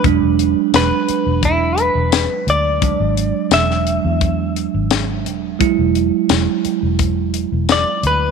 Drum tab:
HH |x-x-x-x-x-x-x-x-|x-x-x-x-x-x-x-x-|x-x-x-x-x-x-x-x-|
TB |----x-------x---|----x-------x---|----x-------x---|
SD |----o-------o---|----oo------o---|----o-------o---|
BD |o-------o-------|o-------o-------|o-------o-------|